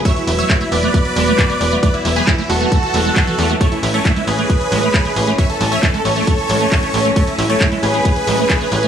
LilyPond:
<<
  \new Staff \with { instrumentName = "Supersaw synth" } { \time 4/4 \key a \major \tempo 4 = 135 <cis'' e''>16 e'16 e'16 <cis'' e''>16 e'16 e'16 <b' d''>2~ <b' d''>16 r16 | <b' d''>16 e'16 e'16 <gis' b'>16 e'16 e'16 <fis' a'>2~ <fis' a'>16 r16 | <a' cis''>16 e'16 e'16 <a' cis''>16 e'16 e'16 <gis' b'>2~ <gis' b'>16 r16 | <cis'' e''>16 a'16 a'16 <cis'' e''>16 a'16 a'16 <a' cis''>2~ <a' cis''>16 r16 |
<a' cis''>16 e'16 e'16 <a' cis''>16 e'16 e'16 <gis' b'>2~ <gis' b'>16 r16 | }
  \new Staff \with { instrumentName = "Acid bass" } { \time 4/4 \key a \major a16 r16 a16 a16 a16 a16 a16 a16 a16 r16 gis16 a16 a,16 a16 a16 a16 | a16 r16 a16 a16 a16 a16 a16 a16 a16 r16 a16 gis16 r16 e16 a16 a16 | a16 r16 a16 a16 a16 gis16 a16 a16 a16 r16 gis16 a16 a,16 a16 a16 a16 | a16 r16 a16 a16 a16 gis16 a16 a16 a16 r16 gis16 a16 a,16 a16 a16 a16 |
a16 r16 a16 a16 a16 gis16 a16 a16 a16 r16 gis16 a16 a,16 a16 a16 a16 | }
  \new Staff \with { instrumentName = "String section" } { \time 4/4 \key a \major << { b1~ | b1 | <a cis'>1~ | <a cis'>1~ |
<a cis'>1 | } \\ { <e fis>1~ | <e fis>1~ | <e fis>1~ | <e fis>1~ |
<e fis>1 | } >> }
  \new Staff \with { instrumentName = "Analog synth bass" } { \clef bass \time 4/4 \key a \major r8 e,,8 r8 e,,8 r8 e,,8 r8 e,,8 | r8 e,,8 r8 e,,8 r8 e,,8 r8 e,8 | r8 a,,8 r8 a,,8 r8 a,,8 r8 a,,8 | r8 a,,8 r8 a,,8 r8 a,,8 r8 a,,8 |
r8 a,,8 r8 a,,8 r8 a,,8 r8 a,,8 | }
  \new DrumStaff \with { instrumentName = "Drums" } \drummode { \time 4/4 <hh bd>16 hh16 hho16 hh16 <hc hh bd>16 hh16 hho16 hh16 <hh bd>16 hh16 hho16 hh16 <hc hh bd>16 hh16 hho16 hh16 | <hh bd>16 hh16 hho16 hh16 <hc hh bd>16 hh16 hho16 hh16 <hh bd>16 hh16 hho16 hh16 <hc hh bd>16 hh16 hho16 hh16 | <hh bd>16 hh16 hho16 hh16 <hc hh bd>16 hh16 hho16 hh16 <hh bd>16 hh16 hho16 hh16 <hc hh bd>16 hh16 hho16 hh16 | <hh bd>16 hh16 hho16 hh16 <hc hh bd>16 hh16 hho16 hh16 <hh bd>16 hh16 hho16 hh16 <hc hh bd>16 hh16 hho16 hh16 |
<hh bd>16 hh16 hho16 hh16 <hc hh bd>16 hh16 hho16 hh16 <hh bd>16 hh16 hho16 hh16 <hc hh bd>16 hh16 hho16 hh16 | }
>>